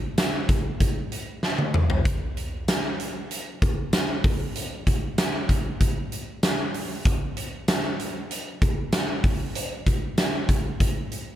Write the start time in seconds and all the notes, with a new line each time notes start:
0.18 snare, closed hi-hat, tambourine
0.49 kick, closed hi-hat
0.80 kick, closed hi-hat
1.12 closed hi-hat
1.43 snare
1.59 high tom
1.74 mid tom
1.90 floor tom
2.05 kick, closed hi-hat
2.37 closed hi-hat
2.68 snare, closed hi-hat, tambourine
3.00 closed hi-hat
3.31 closed hi-hat
3.62 kick, closed hi-hat
3.93 snare, closed hi-hat, tambourine
4.24 kick, open hi-hat
4.55 closed hi-hat
4.87 kick, closed hi-hat
5.18 snare, closed hi-hat, tambourine
5.49 kick, closed hi-hat
5.81 kick, closed hi-hat
6.12 closed hi-hat
6.43 snare, closed hi-hat, tambourine
6.74 open hi-hat
7.05 kick, closed hi-hat
7.37 closed hi-hat
7.68 snare, closed hi-hat, tambourine
8.00 closed hi-hat
8.31 closed hi-hat
8.62 kick, closed hi-hat
8.92 snare, closed hi-hat, tambourine
9.24 kick, open hi-hat
9.55 closed hi-hat
9.87 kick, closed hi-hat
10.18 snare, closed hi-hat, tambourine
10.49 kick, closed hi-hat
10.80 kick, closed hi-hat
11.12 closed hi-hat